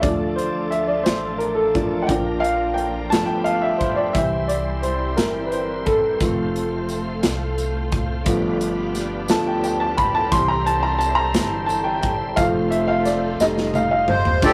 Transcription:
Already playing: A3
0.02 D2 F3 A3 D4 F4 A4 D5, kick, closed hi-hat
0.36 C5, closed hi-hat
0.71 E5, closed hi-hat
0.87 D5
1.03 A1 C5, snare, closed hi-hat
1.38 A#4, closed hi-hat
1.55 A4
1.74 F3 A3 D4, kick, closed hi-hat
2.02 F#5
2.07 A#1 F3 A#3 D4 F4 A#4 G5, kick, closed hi-hat
2.40 F5
2.44 closed hi-hat
2.74 G5, closed hi-hat
3.10 G1 F3 G3 A3 B3 F4 A5, snare, closed hi-hat
3.14 B3 D4 B4
3.25 G5 A5
3.44 F5, closed hi-hat
3.62 E5
3.78 C5, kick, closed hi-hat
3.96 D5
4.13 C2 E3 G3 C4 E4 G4 C5 E5, kick, closed hi-hat
4.48 D5, closed hi-hat
4.82 C5, closed hi-hat
5.17 G1 A#4, snare, closed hi-hat
5.47 B4
5.51 C5, closed hi-hat
5.86 A4, kick, closed hi-hat
6.20 F1 F3 A3 C4 F4 A4, kick, closed hi-hat, tambourine
6.56 closed hi-hat
6.89 closed hi-hat, tambourine
7.23 C2, snare, closed hi-hat, tambourine
7.58 closed hi-hat, tambourine
7.92 kick, closed hi-hat
8.24 G1 F3 G3 A3 B3 D4 F4 G4 B4, kick, closed hi-hat, tambourine
8.28 B3
8.61 closed hi-hat
8.95 snare, closed hi-hat, tambourine
9.28 D2 F3 A3 B3 A5, snare, closed hi-hat, tambourine
9.47 G5
9.64 G5, closed hi-hat, tambourine
9.80 A5
9.97 B5, kick, closed hi-hat
10.15 A5
10.31 C2 E3 G3 C4 E4 C5 C6, kick, closed hi-hat, tambourine
10.48 A#5
10.66 A5, closed hi-hat
10.83 A#5
10.99 A5, closed hi-hat, tambourine
11.15 A#5
11.34 G1, snare, closed hi-hat, tambourine
11.66 A5, closed hi-hat, tambourine
11.84 G5
12.01 G5, kick, closed hi-hat
12.36 F1 F3 A3 C4 F4 A4 F5, kick, closed hi-hat, tambourine
12.70 E5, closed hi-hat
12.88 F5
13.05 D5, snare, closed hi-hat, tambourine
13.40 F1 G3 A3 D#4 D#5, snare, tambourine
13.58 snare
13.74 F5, high tom, tambourine
13.91 F5
14.08 C5, mid tom
14.25 floor tom
14.42 F1 A3 D4 F4 G4 A4 C5 D5, kick, crash, tambourine

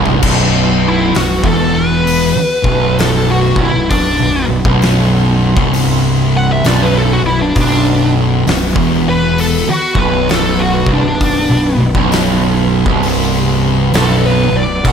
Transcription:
Already playing: C1 C2 B3 E4 B4
0.06 floor tom
0.22 B0 B1 B3 F#4 B4, kick, crash
0.89 E4
1.14 B0 B1 F#4, snare, open hi-hat
1.43 E1 E2 A4, kick
1.76 B4
2.07 open hi-hat
2.36 muted distorted electric guitar stroke, muted fingered electric bass stroke
2.63 B0 B1, kick
2.99 A4, snare, open hi-hat
3.31 F#4
3.54 C1 C2, kick
3.61 E4
3.73 B0 B1
3.90 D4, kick, open hi-hat
4.19 B0 B1
4.47 B0 B1
4.64 B0 B1, kick
4.82 snare, open hi-hat
5.56 C1 C2, kick
5.74 open hi-hat
6.37 F#5
6.52 E5
6.64 B0 B1 D5, snare, open hi-hat
6.82 B4
6.98 A4
7.13 F#4
7.22 B0 B1
7.26 E4
7.42 D4
7.56 B0 B1 D4, kick, open hi-hat
8.47 B0 B1, snare, open hi-hat
8.76 E1 E2, kick
9.09 B4
9.38 A4, open hi-hat
9.68 F#4, muted distorted electric guitar stroke, muted fingered electric bass stroke
9.95 B0 B1 B4, kick
10.29 A4, snare, open hi-hat
10.59 F#4
10.86 C1 C2, kick
10.93 D4
11.04 B0 B1
11.21 kick, open hi-hat
11.49 B0 B1
11.76 B0 B1
11.94 B0 B1, kick
12.12 snare, open hi-hat
12.86 C1 C2, kick
13.03 open hi-hat
13.94 B0 B1 A4, snare, open hi-hat
14.26 B4
14.50 B0 B1
14.57 D5
14.85 B0 B1 E4 F#5, kick, crash

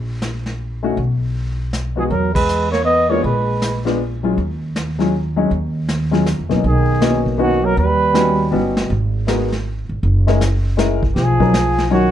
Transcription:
Already playing: A#1
0.22 snare, hi-hat pedal
0.46 snare
0.83 A3 C#4 D#4 F#4
0.97 B1, brush sweep, kick
1.73 snare, hi-hat pedal
1.96 F3 G#3 B3 D#4 F#4 G#4
2.09 E2 F#3 A#4, brush sweep, kick
2.33 G#3 B4, kick, ride
2.48 hi-hat pedal
2.71 A#3 C#5, snare
2.84 B3 D#5
3.09 G#3 A#3 B3 D4 F4 C#5
3.22 A#1 G#3 B4, brush sweep, kick
3.62 snare, hi-hat pedal
3.85 G#3 B3 D4 F4, snare
4.23 F#3 G#3 C#4 F4
4.38 D#2, brush sweep, kick
4.76 snare, hi-hat pedal
4.99 F#3 G#3 C#4 F4, snare
5.36 F#3 G#3 C#4 D#4
5.51 D#2, brush sweep, kick
5.89 snare, hi-hat pedal
6.11 F#3 G#3 C#4 F4, snare
6.26 snare, hi-hat pedal
6.39 F2
6.49 C#2 B2 F#3 A#3 C#4 D#4, snare
6.64 B1 D#3 G#4, brush sweep, kick
7.01 A#3 B3 C#4 D#4 F#4, snare, hi-hat pedal
7.26 kick
7.38 D#3 A#3 B3 C#4 D#4 F#4
7.62 F#3 A#4
7.77 D#2 G3 B4, brush sweep, kick
8.14 G3 B3 C#4 D#4 F#4, snare, hi-hat pedal
8.51 G1 G3 B3 C#4 D#4 F#4
8.77 snare
8.90 G#1, brush sweep, kick
9.27 G#3 B3 D#4 F#4 A#4, snare, hi-hat pedal
9.52 snare
9.89 G#1
10.03 F#1, brush sweep, kick
10.27 G#3 C#4 D#4 E4 A#4, snare
10.41 snare, hi-hat pedal
10.77 G#3 C#4 D#4 E4 A#4, snare, hi-hat pedal
11.03 kick
11.14 B1 F3 G#4, brush sweep, kick, snare
11.39 F#3 C#4 D#4 F4 A#4, kick
11.54 snare, hi-hat pedal
11.78 snare
11.90 D#3 F#3 C#4 D#4 F4 F#4 C#5

